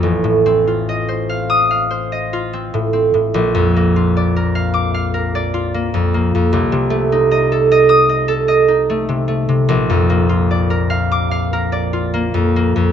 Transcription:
\new Staff \with { instrumentName = "Harp" } { \time 4/4 \key bes \major \tempo 4 = 74 << { r4. r16 ees'''2~ ees'''16 | r4. r16 d'''2~ d'''16 | r4. r16 ees'''2~ ees'''16 | r4. r16 d'''2~ d'''16 | } \\ { <a,, f' f''>16 a,16 c'16 f'16 ees''16 c''16 f''8 f''16 c''16 ees''16 f'16 c'16 a,16 c'16 a,16 | bes,,16 f,16 bes16 f'16 d''16 bes'16 f''8 f''16 bes'16 d''16 f'16 bes16 f,16 bes16 f,16 | c,16 c16 a16 ees'16 ees''16 a'16 ees''8 ees''16 a'16 ees''16 ees'16 a16 c16 a16 c16 | bes,,16 f,16 bes16 f'16 d''16 bes'16 f''8 f''16 bes'16 d''16 f'16 bes16 f,16 bes16 f,16 | } >> }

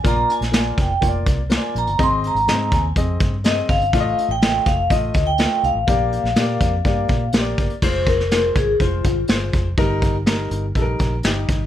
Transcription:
<<
  \new Staff \with { instrumentName = "Vibraphone" } { \time 4/4 \key f \dorian \tempo 4 = 123 bes''8 aes''4 g''8 r4 aes''8 bes''8 | c'''8 bes''4 aes''8 r4 ees''8 f''8~ | f''8. g''8. f''8 ees''8. g''8. f''8~ | f''2. r4 |
c''8 bes'4 aes'8 f'4 r4 | r1 | }
  \new Staff \with { instrumentName = "Upright piano" } { \time 4/4 \key f \dorian <bes f' d''>8. r16 <bes f' d''>8. r16 <bes f' des'' d''>8. r16 <bes f' c'' d''>8. r16 | <c' aes' ees''>8. r16 <c' aes' ees''>8. r16 <c' aes' ees''>8. r16 <c' aes' ees''>8. r16 | <a f' d'' ees''>8. r16 <aes a f' ees''>8. r16 <a f' ees''>8. r16 <a f' ees''>8. r16 | <bes g' d''>8. r16 <bes g' d''>8. r16 <bes g' d''>8. r16 <bes g' c'' d''>8. r16 |
<aes f' c''>8. r16 <aes f' c''>8. r16 <aes f' c''>8. r16 <aes f' c''>8. r16 | <g ees' bes'>8. r16 <g ees' bes'>8. r16 <g ees' a' bes'>8. r16 <g ees' g'>8. r16 | }
  \new Staff \with { instrumentName = "Fingered electric bass" } { \clef bass \time 4/4 \key f \dorian bes,,8 r16 bes,,8. f,,8 f,,8 c,8. r16 bes,,16 g,,16 | aes,,8. aes,,16 aes,8 ees,8 f,8 g,4 g,,8 | a,,8 r16 a,,8. f,,8 a,,8 d,8. r16 c,16 a,,16 | bes,,8. bes,,16 bes,8 f,8 g,8 bes,8 bes,,8 g,,16 r16 |
f,,4. aes,,8 f,,8 aes,,8 g,,8 f,,8 | g,,4. g,,8 bes,,8 bes,,8 g,,8 aes,,8 | }
  \new DrumStaff \with { instrumentName = "Drums" } \drummode { \time 4/4 <hh bd>8 hh16 <hh sn>16 <hh sn>8 <hh bd>8 <hh bd>8 <hh bd>8 <hh sn>8 hh16 hh16 | <hh bd>8 hh16 hh16 <hh sn>8 <hh bd>8 <hh bd>8 <hh bd>8 <hh sn>8 <hho bd>16 hh16 | <hh bd>8 hh8 <hh sn>8 <hh bd sn>8 <hh bd>8 <hh bd>8 <hh sn>8 hh8 | <hh bd>8 hh16 sn16 <hh sn>8 <hh bd>8 <hh bd>8 <hh bd>8 <hh sn>8 <hh bd>16 hh16 |
<cymc bd>8 <hh bd>16 sn16 <hh sn>8 <hh bd sn>8 <hh bd>8 <hh bd>8 <hh sn>8 <hh bd>8 | <hh bd>8 <hh bd>8 <hh sn>8 hh8 <hh bd>8 <hh bd>8 <hh sn>8 <hh bd>8 | }
>>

